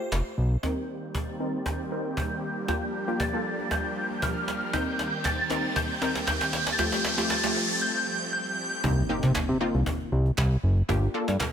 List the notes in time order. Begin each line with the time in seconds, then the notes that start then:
Already playing: A3 F4 G4
0.12 F1, cajon slap
0.38 B1
0.63 D#3 G3 A#3 C4 D#4 G4 A#4 G6, cajon bass, cajon slap, riser
1.15 A6, cajon bass, cajon slap
1.40 C4 D#4 A#4
1.66 G6, cajon bass, cajon slap
1.91 C4 D#4 A#4
2.17 G6, cajon bass, cajon slap
2.68 F3 A#3 D4 F4 G4 G6, cajon bass, cajon slap
2.82 cajon slap
3.07 A#3 F4 G4, cajon slap
3.20 A6, cajon bass, cajon slap
3.33 A#3 F4 A4, cajon slap
3.59 cajon slap
3.71 G6, cajon bass, cajon slap
3.85 cajon slap
4.10 cajon slap
4.22 F6, cajon bass, cajon slap
4.36 cajon slap
4.48 cajon slap
4.62 cajon slap
4.73 D#3 C4 D#4 G4 A#4 G6, cajon bass, cajon slap
4.99 cajon slap
5.25 A6, cajon bass, cajon slap, clap
5.38 cajon slap
5.50 C4 D#4 A#4, cajon slap, clap
5.64 cajon slap
5.76 G6, cajon bass, cajon slap
6.02 C4 D#4 A#4, cajon slap
6.15 cajon slap
6.27 G6, cajon bass, cajon slap, clap
6.41 cajon slap
6.53 cajon slap
6.67 cajon slap
6.72 A6
6.79 F3 A3 C4 F4 G4 G6, cajon bass, cajon slap
6.92 cajon slap
7.04 cajon slap
7.18 A3 F4 G4, cajon slap
7.30 A6, cajon slap, clap
7.43 A3 F4 G4, cajon slap
7.56 clap
7.69 cajon slap
7.82 G6
8.33 G6
8.84 C2 A#3 C4 D#4 G4, cajon bass, impact
8.98 cajon slap
9.09 A#3 C4 D#4 G4, cajon slap
9.23 C3, cajon slap
9.35 C3, cajon bass, cajon slap, clap
9.49 C3, cajon slap
9.60 A#3 C4 D#4 F4, cajon slap
9.74 C2, cajon slap
9.86 cajon bass
10.00 cajon slap
10.12 C2, cajon slap
10.26 cajon slap
10.38 C2, cajon bass, cajon slap, clap
10.51 cajon slap
10.63 F#1, cajon slap
10.77 cajon slap
10.89 G1 A#3 D4 F4 G4, cajon bass
11.03 cajon slap
11.14 A#3 D4 F4 A4, cajon slap
11.28 G2, cajon slap
11.40 G2, cajon bass, cajon slap, clap